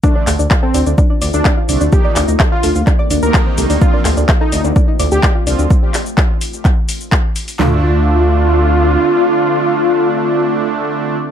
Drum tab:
HH |--o---o---o---o-|--o---o---o---oo|--o---o---o---o-|--o---o---o---oo|
SH |x-xxx-xxx-xxx-xx|x-xxx-xxx-xxx-xx|x-xxx-xxx-xxx-xx|x-xxx-xxx-xxx-xx|
CP |--x-x-------x---|--x-x---x---x---|--x-x-------x---|--x-x---x---x---|
SD |----------------|----------------|----------------|----------------|
FT |----------------|----------------|----------------|----------------|
BD |o---o---o---o---|o---o---o---o---|o---o---o---o---|o---o---o---o---|

HH |----------------|----------------|
SH |----------------|----------------|
CP |x---------------|----------------|
SD |o---------------|----------------|
FT |o---------------|----------------|
BD |----------------|----------------|